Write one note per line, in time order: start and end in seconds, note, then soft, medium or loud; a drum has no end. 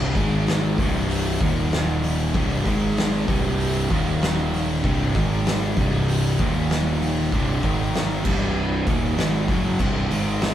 0.00 0.13 C1 loud
0.00 0.15 C2 medium
0.00 0.15 G2 medium
0.00 0.16 C3 loud
0.15 0.74 G#1 medium
0.15 0.78 G#2 medium
0.15 0.78 D#3 medium
0.15 0.78 G#3 loud
0.15 kick loud
0.15 open hi-hat medium
0.47 snare loud
0.47 open hi-hat medium
0.78 1.37 C1 medium
0.78 1.40 C2 medium
0.78 1.41 G2 medium
0.78 1.41 C3 loud
0.78 kick loud
0.78 open hi-hat medium
1.10 open hi-hat medium
1.40 2.30 D#1 loud
1.40 2.34 D#2 medium
1.40 2.34 A#2 loud
1.40 2.34 D#3 loud
1.40 kick loud
1.40 open hi-hat medium
1.72 snare loud
1.72 open hi-hat medium
2.03 open hi-hat medium
2.34 2.64 C1 loud
2.34 2.65 C2 medium
2.34 2.65 G2 loud
2.34 2.66 C3 loud
2.34 kick loud
2.34 open hi-hat medium
2.65 3.24 G#1 medium
2.65 3.28 G#2 loud
2.65 3.28 D#3 loud
2.65 3.28 G#3 loud
2.65 kick loud
2.65 open hi-hat medium
2.97 snare loud
2.97 open hi-hat medium
3.28 3.87 C1 medium
3.28 3.90 C2 medium
3.28 3.90 G2 medium
3.28 3.90 C3 loud
3.28 kick loud
3.28 open hi-hat medium
3.60 open hi-hat medium
3.90 4.80 D#1 medium
3.90 4.83 D#2 loud
3.90 4.84 A#2 medium
3.90 4.84 D#3 loud
3.90 kick loud
3.90 open hi-hat medium
4.22 snare loud
4.22 open hi-hat medium
4.53 open hi-hat medium
4.84 5.13 C1 loud
4.84 5.14 C2 loud
4.84 5.15 G2 loud
4.84 5.15 C3 loud
4.84 kick loud
4.84 open hi-hat medium
5.15 5.73 G#1 loud
5.15 5.77 G#2 medium
5.15 5.77 D#3 loud
5.15 5.77 G#3 loud
5.15 kick loud
5.15 open hi-hat medium
5.46 snare loud
5.46 open hi-hat medium
5.77 6.35 C1 medium
5.77 6.38 C2 loud
5.77 6.39 G2 medium
5.77 6.39 C3 loud
5.77 kick loud
5.77 open hi-hat medium
6.08 open hi-hat medium
6.39 7.28 D#1 loud
6.39 7.31 D#2 loud
6.39 7.32 A#2 loud
6.39 7.32 D#3 loud
6.39 kick loud
6.39 open hi-hat medium
6.70 snare loud
6.70 open hi-hat medium
7.01 open hi-hat medium
7.32 7.61 C1 loud
7.32 7.63 C2 loud
7.32 7.64 G2 medium
7.32 7.64 C3 loud
7.32 kick loud
7.32 open hi-hat medium
7.63 8.21 G#1 medium
7.63 8.24 G#2 medium
7.63 8.24 D#3 loud
7.63 8.24 G#3 medium
7.63 kick loud
7.63 open hi-hat medium
7.94 snare loud
7.94 open hi-hat medium
8.25 8.83 C1 medium
8.25 8.86 C2 medium
8.25 8.86 G2 medium
8.25 8.86 C3 medium
8.25 kick loud
8.25 crash loud
8.86 9.16 D#1 loud
8.86 9.17 D#2 medium
8.86 9.17 A#2 loud
8.86 9.17 D#3 loud
8.86 kick loud
8.86 open hi-hat medium
9.17 9.46 G#1 loud
9.17 9.48 G#2 medium
9.17 9.48 D#3 loud
9.17 9.49 G#3 loud
9.17 snare loud
9.17 open hi-hat medium
9.48 9.77 F#1 medium
9.48 9.79 F#2 medium
9.48 9.79 C#3 loud
9.48 9.80 F#3 loud
9.48 kick loud
9.48 open hi-hat medium
9.79 10.08 C1 loud
9.79 10.09 C2 medium
9.79 10.10 G2 loud
9.79 10.10 C3 loud
9.79 kick loud
9.79 crash medium
10.10 10.54 G#1 medium
10.10 10.54 G#2 medium
10.10 10.54 D#3 loud
10.10 10.54 G#3 loud
10.10 open hi-hat medium
10.41 snare loud
10.41 open hi-hat medium